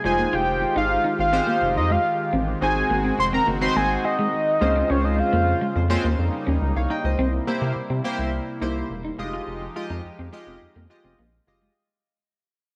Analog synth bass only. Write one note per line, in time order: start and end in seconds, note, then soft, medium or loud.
0.05 0.25 F1 loud
0.33 0.64 F1 loud
0.76 0.97 G#1 loud
1.19 1.40 G#1 medium
1.62 1.78 F1 medium
1.76 1.97 F2 loud
2.33 2.54 A1 loud
2.62 2.82 G#1 loud
2.90 3.11 G#1 loud
3.19 3.39 F1 loud
3.47 3.68 F#1 loud
3.76 3.97 G#1 loud
4.62 4.82 C#2 loud
4.90 5.21 C#2 loud
5.33 5.54 F2 medium
5.76 5.97 F2 medium
6.04 6.15 D#2 loud
6.19 6.29 F2 medium
6.47 6.58 D#2 medium
6.62 6.72 C#2 loud
6.76 6.86 C2 loud
7.04 7.15 C#2 loud
7.19 7.39 C2 loud
7.62 7.72 C3 loud
7.76 7.82 C3 soft
7.90 8.00 C3 medium
8.19 8.39 C2 medium
8.61 8.82 C2 medium
8.90 9.11 E1 loud
9.19 9.39 F1 loud
9.47 9.68 F1 loud
9.90 10.00 F2 loud
10.05 10.10 F2 medium
10.19 10.29 F2 medium
10.47 10.58 F1 loud
10.62 10.67 F2 medium
10.76 10.86 F2 loud
11.04 11.15 F1 medium
11.19 11.39 A#1 loud
11.47 11.68 F#1 loud